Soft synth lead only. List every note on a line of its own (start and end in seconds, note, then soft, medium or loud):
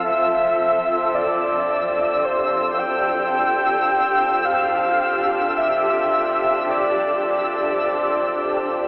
0.04 1.16 E5 loud
1.14 2.26 D5 medium
2.25 2.80 C5 medium
2.78 4.46 G5 loud
4.45 5.59 F5 loud
5.57 6.70 E5 medium
6.70 7.22 D5 medium
7.26 8.88 D5 medium